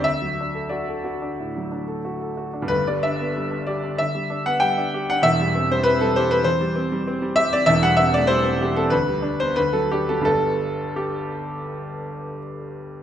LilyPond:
<<
  \new Staff \with { instrumentName = "Grand piano" } { \time 4/4 \key g \major \tempo 4 = 93 e''4 d''2 r4 | b'16 d''16 e''4 d''8 e''8. fis''16 g''8. fis''16 | e''8. c''16 b'16 a'16 c''16 b'16 c''4. e''16 d''16 | e''16 fis''16 e''16 d''16 c''8. a'16 b'8. c''16 b'16 a'16 g'16 a'16 |
a'4 g'2 r4 | }
  \new Staff \with { instrumentName = "Grand piano" } { \time 4/4 \key g \major d,16 fis16 d'16 a'16 fis'16 a'16 fis'16 d'16 a,16 fis16 d'16 a'16 fis'16 a'16 fis'16 d'16 | <g,, g,>16 g16 d'16 b16 g16 d'16 g'16 d'16 d16 g16 d'16 b16 g16 d'16 g'16 d'16 | <e,, e,>16 g16 c'16 g16 c'16 g16 g'16 c'16 e,16 g16 c'16 g16 c'16 g16 g'16 c'16 | <e,, e,>16 g16 c'16 a16 g16 c'16 g'16 c'16 d,16 g16 d'16 b16 d,16 fis16 d'16 fis16 |
<g,, g, g b d'>1 | }
>>